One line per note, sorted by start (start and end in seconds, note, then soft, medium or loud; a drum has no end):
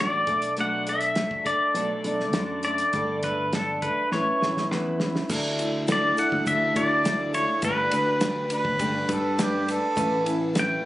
0.00 0.21 A1 medium
0.00 0.27 F#3 medium
0.00 0.28 A3 medium
0.00 0.26 D4 medium
0.00 0.26 F#4 medium
0.00 0.54 D5 loud
0.26 1.21 B1 medium
0.26 0.56 A3 soft
0.26 0.57 D4 soft
0.26 0.57 A4 medium
0.26 kick medium
0.26 closed hi-hat medium
0.42 closed hi-hat medium
0.57 0.87 B2 medium
0.57 0.87 F#3 medium
0.57 0.87 A3 medium
0.57 0.87 D4 medium
0.57 0.86 A4 medium
0.57 0.89 F#5 loud
0.57 closed hi-hat medium
0.87 1.16 A3 soft
0.87 1.16 D4 soft
0.87 1.17 A4 medium
0.87 1.49 E5 loud
0.87 closed hi-hat medium
1.01 closed hi-hat medium
1.15 1.46 F#3 medium
1.15 1.44 A3 medium
1.15 1.44 D4 medium
1.15 1.43 A4 medium
1.15 snare loud
1.15 closed hi-hat medium
1.31 kick medium
1.44 1.75 A3 soft
1.44 1.74 D4 soft
1.44 1.74 A4 medium
1.44 2.63 D5 medium
1.44 kick medium
1.44 closed hi-hat medium
1.74 1.87 B1 medium
1.74 2.05 B2 medium
1.74 2.05 F#3 medium
1.74 2.05 A3 medium
1.74 2.04 D4 medium
1.74 2.03 A4 medium
1.74 closed hi-hat medium
2.04 2.34 B1 medium
2.04 2.33 A3 soft
2.04 2.34 D4 soft
2.04 2.34 A4 medium
2.04 closed hi-hat medium
2.20 snare soft
2.33 2.81 F#2 medium
2.33 2.64 F#3 medium
2.33 2.64 A3 medium
2.33 2.64 D4 medium
2.33 2.63 A4 medium
2.33 snare loud
2.33 closed hi-hat medium
2.63 2.93 A3 soft
2.63 2.94 D4 soft
2.63 2.94 A4 medium
2.63 3.20 D5 medium
2.63 closed hi-hat medium
2.78 closed hi-hat medium
2.93 3.87 G1 medium
2.93 3.23 G3 medium
2.93 3.24 A3 medium
2.93 3.24 D4 medium
2.93 3.23 A4 medium
2.93 kick loud
2.93 closed hi-hat medium
3.23 3.52 A3 soft
3.23 3.53 D4 soft
3.23 3.53 A4 soft
3.23 3.54 B4 medium
3.23 kick medium
3.23 closed hi-hat medium
3.52 3.82 G3 medium
3.52 3.83 A3 medium
3.52 3.83 D4 medium
3.52 3.83 A4 medium
3.52 3.84 A4 medium
3.52 snare loud
3.52 closed hi-hat medium
3.82 4.11 A3 soft
3.82 4.13 D4 soft
3.82 4.13 A4 soft
3.82 4.12 B4 medium
3.82 kick medium
3.82 closed hi-hat medium
4.12 4.24 A1 medium
4.12 4.42 A3 medium
4.12 4.42 C#4 medium
4.12 4.41 E4 medium
4.12 4.40 B4 medium
4.12 4.67 C#5 medium
4.12 snare medium
4.41 4.71 A1 medium
4.41 4.71 C#4 soft
4.41 4.71 E4 soft
4.41 4.71 B4 medium
4.41 snare medium
4.57 snare medium
4.71 5.17 E2 medium
4.71 5.01 A3 medium
4.71 5.01 C#4 medium
4.71 5.01 E4 medium
4.71 5.00 B4 medium
4.71 snare medium
5.00 5.30 C#4 soft
5.00 5.30 E4 medium
5.00 5.30 B4 medium
5.00 snare medium
5.16 snare medium
5.29 6.11 D2 loud
5.29 5.59 D3 medium
5.29 5.59 A3 medium
5.29 5.59 D4 loud
5.29 5.58 E4 loud
5.29 5.57 A4 loud
5.29 kick loud
5.29 crash loud
5.29 shaker loud
5.58 5.86 D4 medium
5.58 5.86 E4 medium
5.58 5.87 A4 medium
5.58 ride medium
5.58 shaker medium
5.87 6.17 A3 medium
5.87 6.17 D4 medium
5.87 6.17 E4 medium
5.87 6.16 A4 medium
5.87 snare loud
5.87 ride loud
5.87 shaker medium
5.92 6.20 D5 medium
6.17 6.45 D4 soft
6.17 6.45 E4 soft
6.17 6.46 A4 medium
6.17 6.47 F#5 loud
6.17 ride medium
6.17 shaker medium
6.32 6.44 D2 medium
6.32 kick medium
6.46 6.70 D2 medium
6.46 6.76 D3 medium
6.46 6.76 A3 medium
6.46 6.76 D4 medium
6.46 6.75 E4 medium
6.46 6.74 A4 medium
6.46 6.77 E5 loud
6.46 kick loud
6.46 ride loud
6.46 shaker loud
6.75 7.45 D2 medium
6.75 7.03 D4 soft
6.75 7.04 E4 medium
6.75 7.04 A4 medium
6.75 7.34 D5 loud
6.75 kick medium
6.75 ride medium
6.75 shaker medium
7.03 7.33 A3 medium
7.03 7.33 D4 medium
7.03 7.32 E4 medium
7.03 7.31 A4 medium
7.03 snare loud
7.03 ride loud
7.03 shaker loud
7.32 7.62 D4 soft
7.32 7.63 E4 medium
7.32 7.63 A4 medium
7.32 7.62 C#5 medium
7.32 snare soft
7.32 ride medium
7.32 shaker medium
7.62 7.86 G1 loud
7.62 7.92 G3 medium
7.62 7.93 A3 medium
7.62 7.92 D4 loud
7.62 7.92 G4 medium
7.62 7.90 B4 medium
7.62 9.64 B4 medium
7.62 kick loud
7.62 ride loud
7.62 shaker loud
7.91 8.66 D2 medium
7.91 8.20 D4 medium
7.91 8.21 G4 soft
7.91 8.21 B4 medium
7.91 ride medium
7.91 shaker medium
8.20 8.50 A3 medium
8.20 8.51 D4 medium
8.20 8.50 G4 medium
8.20 8.49 B4 medium
8.20 snare loud
8.20 ride loud
8.20 shaker loud
8.50 8.79 D4 soft
8.50 8.79 G4 medium
8.50 8.79 B4 medium
8.50 9.09 B4 loud
8.50 ride medium
8.50 shaker medium
8.65 8.76 G1 loud
8.65 kick medium
8.79 9.03 G1 medium
8.79 9.09 G3 medium
8.79 9.09 A3 medium
8.79 9.09 D4 medium
8.79 9.09 G4 medium
8.79 9.08 B4 loud
8.79 kick medium
8.79 ride loud
8.79 shaker medium
9.09 9.78 G2 medium
9.09 9.38 D4 medium
9.09 9.39 G4 medium
9.09 9.43 A4 medium
9.09 9.38 B4 medium
9.09 kick medium
9.09 ride medium
9.09 shaker medium
9.38 9.67 A3 medium
9.38 9.68 D4 medium
9.38 9.68 G4 medium
9.38 9.67 B4 medium
9.38 snare loud
9.38 ride loud
9.38 shaker medium
9.68 9.96 D4 medium
9.68 9.97 G4 medium
9.68 10.40 A4 loud
9.68 9.96 B4 medium
9.68 snare soft
9.68 ride medium
9.68 shaker medium
9.96 10.77 A1 loud
9.96 10.25 A3 loud
9.96 10.24 C#4 loud
9.96 10.25 E4 loud
9.96 10.23 B4 loud
9.96 kick loud
9.96 ride loud
9.96 shaker medium
10.25 10.54 C#4 medium
10.25 10.53 E4 medium
10.25 10.54 B4 medium
10.25 ride medium
10.25 shaker medium
10.53 10.83 A3 medium
10.53 10.83 C#4 medium
10.53 10.84 E4 medium
10.53 10.82 B4 medium
10.53 snare loud
10.53 ride loud
10.53 shaker medium
10.59 10.85 G5 loud